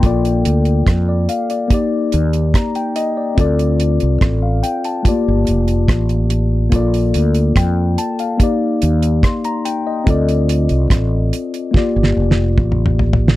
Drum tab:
HH |x--x--x--x--x-----x--x--x-----x--x--x--x--x-----|x--x--x--x--x-----x--x--x-----x--x--x--x--x-----|x--x--x--x--x-----x--x--x-----x--x--x--x--x-----|x--x--x--x--x-----x--x--------------------------|
SD |------------r-----------------------r-----------|------------r-----------------------r-----------|------------r-----------------------r-----------|------------r-----------o---o---o-------------o-|
T2 |------------------------------------------------|------------------------------------------------|------------------------------------------------|------------------------------------o-o-o-------|
FT |------------------------------------------------|------------------------------------------------|------------------------------------------------|------------------------------------------o-o---|
BD |o-----------o-----------o-----------o-----------|o-----------o-----------o-----------o-----------|o-----------o-----------o-----------o-----------|o-----------o-----------o-----------o-----------|